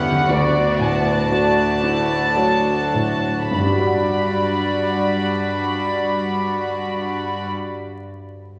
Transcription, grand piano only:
0.00 0.28 D3 soft
0.00 0.31 D4 soft
0.00 0.30 G4 soft
0.00 0.31 B4 soft
0.00 0.30 F#5 soft
0.29 3.48 D2 soft
0.79 1.62 A2 soft
1.32 1.79 F#4 soft
1.32 1.80 D5 soft
1.83 2.71 D4 soft
2.37 2.90 F#4 soft
2.37 2.90 C#5 soft
2.94 3.51 A2 soft
3.51 7.46 G2 soft
3.59 7.54 G3 soft
3.65 7.61 D4 soft
3.72 7.68 F#4 soft
3.80 7.75 D5 soft
3.86 7.82 F#5 soft

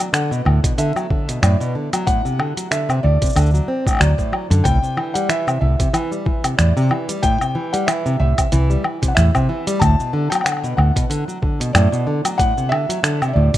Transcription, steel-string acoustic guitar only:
0.00 0.12 F#3 medium
0.13 0.30 D3 medium
0.31 0.44 B2 loud
0.45 0.62 A2 medium
0.64 0.72 B2 medium
0.78 0.94 D3 loud
0.96 1.09 F#3 medium
1.11 1.27 D3 medium
1.29 1.41 B2 medium
1.43 1.59 A2 loud
1.60 1.73 B2 loud
1.75 1.91 D3 medium
1.93 2.06 F#3 loud
2.07 2.23 A2 loud
2.25 2.38 C3 medium
2.39 2.56 D3 medium
2.57 2.70 F#3 medium
2.71 2.88 D3 medium
2.89 3.02 C3 loud
3.04 3.20 A2 medium
3.22 3.30 C3 medium
3.36 3.52 D3 loud
3.54 3.67 F#3 medium
3.68 3.85 C4 medium
3.86 3.99 A2 medium
4.00 4.11 F#3 medium
4.18 4.31 A2 loud
4.33 4.49 F#3 medium
4.50 4.64 D3 medium
4.65 4.81 A2 medium
4.82 4.96 C3 medium
4.97 5.14 E3 medium
5.15 5.28 G3 medium
5.29 5.46 E3 medium
5.47 5.60 C3 medium
5.62 5.78 A2 medium
5.79 5.88 C3 medium
5.93 6.10 E3 loud
6.12 6.25 G3 medium
6.26 6.43 E3 medium
6.44 6.57 C3 medium
6.58 6.75 A2 loud
6.77 6.90 C3 loud
6.91 7.07 E3 medium
7.09 7.22 G3 loud
7.23 7.39 A2 medium
7.41 7.54 C3 medium
7.55 7.72 E3 medium
7.74 7.87 G3 medium
7.88 8.04 E3 medium
8.06 8.19 C3 loud
8.20 8.37 A2 medium
8.38 8.46 C3 medium
8.52 8.69 E3 medium
8.70 8.83 G3 medium
8.84 9.01 E3 medium
9.02 9.15 C3 medium
9.17 9.33 A2 loud
9.35 9.48 C3 loud
9.49 9.65 E3 medium
9.67 9.80 G3 loud
9.81 9.98 A2 medium
10.00 10.12 B2 medium
10.13 10.30 D3 medium
10.32 10.45 F#3 medium
10.45 10.62 D3 medium
10.64 10.77 B2 loud
10.78 10.94 A2 medium
10.96 11.04 B2 medium
11.10 11.26 D3 loud
11.28 11.41 F#3 medium
11.42 11.59 D3 medium
11.60 11.73 B2 medium
11.75 11.91 A2 loud
11.92 12.06 B2 loud
12.07 12.23 D3 medium
12.25 12.38 F#3 loud
12.39 12.55 A2 loud
12.57 12.70 C3 medium
12.71 12.88 D3 medium
12.89 13.02 F#3 medium
13.03 13.20 D3 medium
13.22 13.35 C3 loud
13.36 13.53 A2 medium
13.54 13.58 C3 medium

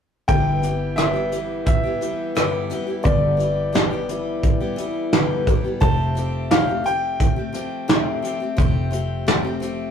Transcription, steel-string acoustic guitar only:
0.28 0.63 G2 medium
0.28 0.63 D3 medium
0.28 0.61 E3 medium
0.28 0.62 G3 medium
0.28 0.63 B3 medium
0.28 0.63 G4 medium
0.62 0.97 E3 medium
0.62 0.97 G3 medium
0.62 0.98 B3 medium
0.62 0.98 G4 medium
0.97 1.14 G2 medium
0.97 1.15 D3 medium
0.97 1.15 E3 medium
0.97 1.15 G3 medium
0.97 1.14 B3 medium
0.97 1.12 G4 medium
1.14 1.31 E3 soft
1.14 1.32 G3 soft
1.14 1.32 B3 soft
1.14 1.31 G4 soft
1.32 1.84 E3 soft
1.32 1.84 G3 soft
1.32 1.84 B3 medium
1.32 1.82 G4 medium
1.83 2.00 E3 soft
1.83 2.01 G3 soft
1.83 2.02 B3 soft
1.83 2.01 G4 soft
2.01 2.35 E3 medium
2.01 2.36 G3 medium
2.01 2.36 B3 medium
2.01 2.37 G4 medium
2.35 2.70 G2 medium
2.35 2.70 D3 medium
2.35 2.69 E3 medium
2.35 2.69 G3 medium
2.35 2.71 B3 medium
2.35 2.71 G4 medium
2.70 2.87 E3 medium
2.70 2.88 G3 medium
2.70 2.87 B3 medium
2.70 2.85 G4 medium
2.87 3.03 E3 soft
2.87 3.04 G3 soft
2.87 3.04 B3 soft
2.87 3.04 G4 soft
3.03 3.38 G2 medium
3.03 3.39 D3 medium
3.03 3.36 E3 medium
3.03 3.37 G3 medium
3.03 3.38 B3 medium
3.03 3.39 G4 medium
3.37 3.73 E3 soft
3.37 3.73 G3 medium
3.37 3.73 B3 medium
3.37 3.74 G4 medium
3.73 3.90 G2 medium
3.73 3.91 D3 medium
3.73 3.91 E3 medium
3.73 3.91 G3 medium
3.73 3.91 B3 medium
3.73 3.89 G4 medium
3.91 4.08 E3 soft
3.91 4.09 G3 soft
3.91 4.09 B3 medium
3.91 4.08 G4 medium
4.09 4.61 E3 medium
4.09 4.61 G3 medium
4.09 4.60 B3 medium
4.09 4.59 G4 medium
4.60 4.75 E3 soft
4.60 4.77 G3 soft
4.60 4.78 B3 soft
4.60 4.77 G4 soft
4.76 5.11 E3 medium
4.76 5.12 G3 medium
4.76 5.13 B3 medium
4.76 5.13 G4 medium
5.13 5.47 G2 medium
5.13 5.47 D3 medium
5.13 5.47 E3 medium
5.13 5.47 G3 medium
5.13 5.48 B3 medium
5.13 5.48 G4 medium
5.48 5.64 E3 medium
5.48 5.65 G3 medium
5.48 5.64 B3 medium
5.48 5.63 G4 medium
5.64 5.80 E3 soft
5.64 5.81 G3 soft
5.64 5.82 B3 soft
5.64 5.81 G4 soft
5.80 6.14 F3 medium
5.80 6.15 A3 medium
5.80 6.16 C4 medium
5.80 6.16 G4 medium
6.15 6.50 F3 medium
6.15 6.50 A3 medium
6.15 6.51 C4 medium
6.15 6.51 G4 medium
6.52 6.68 F3 medium
6.52 6.69 A3 medium
6.52 6.68 C4 medium
6.52 6.66 G4 medium
6.67 6.85 A3 soft
6.67 6.86 C4 soft
6.67 6.85 G4 medium
6.84 7.36 F3 soft
6.84 7.37 A3 medium
6.84 7.37 C4 medium
6.84 7.35 G4 medium
7.36 7.53 A3 soft
7.36 7.54 C4 soft
7.36 7.54 G4 soft
7.53 7.87 F3 medium
7.53 7.88 A3 medium
7.53 7.88 C4 medium
7.53 7.89 G4 medium
7.88 8.21 F3 medium
7.88 8.23 A3 medium
7.88 8.23 C4 medium
7.88 8.24 G4 medium
8.22 8.40 F3 medium
8.22 8.41 A3 medium
8.22 8.41 C4 medium
8.22 8.39 G4 medium
8.40 8.57 A3 soft
8.40 8.57 C4 soft
8.40 8.57 G4 soft
8.57 8.89 F3 medium
8.57 8.90 A3 medium
8.57 8.92 C4 medium
8.57 8.93 G4 medium
8.91 9.25 F3 medium
8.91 9.26 A3 medium
8.91 9.27 C4 medium
8.91 9.28 G4 medium
9.27 9.44 F3 medium
9.27 9.45 A3 medium
9.27 9.43 C4 medium
9.27 9.42 G4 medium
9.43 9.61 A3 soft
9.43 9.61 C4 medium
9.43 9.61 G4 medium
9.60 9.91 F3 medium
9.60 9.91 A3 medium
9.60 9.91 C4 medium
9.60 9.91 G4 medium

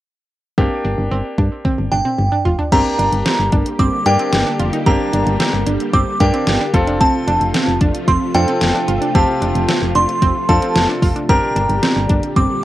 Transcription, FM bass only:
0.58 0.69 G1 loud
0.85 0.96 G1 loud
0.98 1.09 G1 medium
1.11 1.22 G1 loud
1.38 1.49 G2 medium
1.78 1.89 G1 medium
1.92 2.03 G1 loud
2.18 2.30 G1 loud
2.45 2.56 F1 medium
2.72 2.83 G1 loud
2.99 3.10 G1 loud
3.12 3.23 G1 medium
3.39 3.50 G1 loud
3.53 3.64 G1 loud
3.79 3.90 G1 loud
4.06 4.17 G2 loud
4.33 4.44 G1 loud
4.60 4.71 F1 medium
4.86 4.98 G1 loud
5.13 5.24 G1 loud
5.27 5.38 G1 loud
5.53 5.64 G1 loud
5.67 5.78 G1 medium
5.93 6.05 G1 loud
6.20 6.31 G2 loud
6.47 6.58 G1 loud
6.74 7.07 F1 loud
7.28 7.39 F1 loud
7.41 7.52 F1 medium
7.68 7.79 F1 medium
7.81 7.92 F1 loud
8.08 8.19 F1 loud
8.35 8.46 F2 loud
8.61 8.73 F1 loud
8.88 8.99 G1 medium
9.15 9.26 F1 loud
9.42 9.53 F1 loud
9.55 9.66 F1 loud
9.82 9.93 F1 loud
9.95 10.06 F1 loud
10.22 10.33 F1 loud
10.49 10.60 F2 loud
10.76 10.87 F1 loud
11.02 11.13 F1 medium
11.29 11.40 G1 loud
11.56 11.67 G1 loud
11.69 11.80 G1 loud
11.96 12.07 G1 loud
12.10 12.21 G1 loud
12.36 12.47 G1 loud

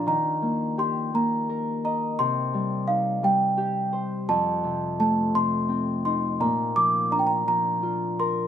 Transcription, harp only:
0.00 0.11 A#2 medium
0.00 0.11 F3 soft
0.00 0.56 C4 medium
0.00 0.12 D4 soft
0.00 2.23 F4 soft
0.06 2.24 D#3 medium
0.42 1.14 A#3 soft
0.78 3.13 G4 soft
1.14 4.36 A#3 soft
1.49 3.61 A#4 soft
1.84 3.63 D#5 medium
2.19 4.33 C3 medium
2.54 3.22 G3 soft
2.88 5.58 D#4 medium
3.23 4.33 G3 soft
3.57 5.93 G4 medium
3.93 5.91 C5 soft
4.29 6.45 F2 medium
4.64 5.33 C3 soft
4.99 6.46 A3 medium
5.34 6.45 C3 soft
5.69 8.47 C4 medium
6.05 7.17 D#4 medium
6.40 8.47 A#2 medium
6.76 7.46 F3 soft
7.11 8.47 D4 soft
7.47 8.47 F3 soft
7.83 8.47 F4 soft
8.20 8.47 A#4 soft

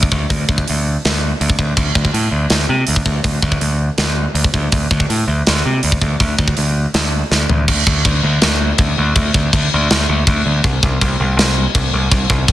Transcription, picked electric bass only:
0.12 0.25 D2 medium
0.30 0.44 D2 loud
0.50 0.63 D2 medium
0.70 0.96 D2 medium
1.05 1.32 D2 medium
1.41 1.54 D2 medium
1.59 1.73 D2 medium
1.77 1.91 D2 medium
1.96 2.09 D2 medium
2.14 2.28 A2 medium
2.31 2.46 D2 medium
2.51 2.65 D2 loud
2.69 2.83 C3 medium
2.88 3.02 D2 medium
3.06 3.20 D2 medium
3.24 3.38 D2 medium
3.43 3.57 D2 medium
3.61 3.89 D2 medium
3.98 4.26 D2 medium
4.34 4.49 D2 medium
4.54 4.68 D2 medium
4.73 4.86 D2 medium
4.91 5.05 D2 medium
5.10 5.23 A2 medium
5.28 5.42 D2 medium
5.48 5.61 D2 medium
5.65 5.79 C3 loud
5.84 5.97 D2 medium
6.01 6.15 D2 medium
6.20 6.34 D2 medium
6.39 6.53 D2 medium
6.58 6.85 D2 medium
6.94 7.22 D2 medium
7.31 7.45 D2 medium
7.50 7.64 D2 medium
7.68 7.83 D2 loud
7.87 8.01 D2 loud
8.05 8.20 D2 medium
8.23 8.38 D2 medium
8.43 8.71 D2 medium
8.80 8.94 D2 loud
8.98 9.12 D2 medium
9.15 9.30 D2 loud
9.35 9.49 D2 medium
9.53 9.68 D2 loud
9.74 9.87 D2 loud
9.91 10.05 D2 loud
10.09 10.23 D2 loud
10.28 10.42 D2 medium
10.46 10.60 D2 medium
10.64 10.79 C2 loud
10.84 10.97 C2 loud
11.01 11.15 C2 loud
11.20 11.34 C2 loud
11.37 11.66 C2 loud
11.76 11.89 C2 medium
11.93 12.08 C2 medium
12.11 12.26 C2 loud
12.30 12.44 C2 medium

